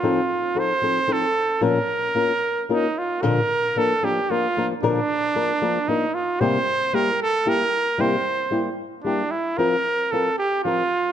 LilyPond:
<<
  \new Staff \with { instrumentName = "Trumpet" } { \time 3/4 \key bes \minor \tempo 4 = 113 f'4 c''4 a'4 | bes'2 ees'8 f'8 | \key bes \major bes'4 a'8 g'8 f'4 | d'2 ees'8 f'8 |
c''4 bes'8 a'8 bes'4 | c''4. r8 d'8 e'8 | bes'4 a'8 g'8 f'4 | }
  \new Staff \with { instrumentName = "Nylon-string guitar" } { \time 3/4 \key bes \minor <f c' ees' a'>8 r8 <f c' ees' a'>8 <f c' ees' a'>8 <f c' ees' a'>8 r8 | <bes, f bes des' f' bes'>8 r8 <bes des' f' bes'>8 r8 <bes des' f' bes'>8 r8 | \key bes \major <bes, d f bes d' bes'>8 r8 <f bes d' bes'>8 <f bes d' bes'>8 <f bes d' bes'>8 <f bes d' bes'>8 | <bes, d f bes d' bes'>8 r8 <f bes d' bes'>8 <f bes d' bes'>8 <f bes d' bes'>8 r8 |
<c g bes e' g'>8 r8 <g bes e' g'>8 r8 <g bes e' g'>8 r8 | <c g bes e' g'>8 r8 <g bes e' g'>8 r8 <g bes e' g'>8 r8 | <f c' f' bes'>8 r8 <f c' f' bes'>8 r8 <f c' f' bes'>8 r8 | }
>>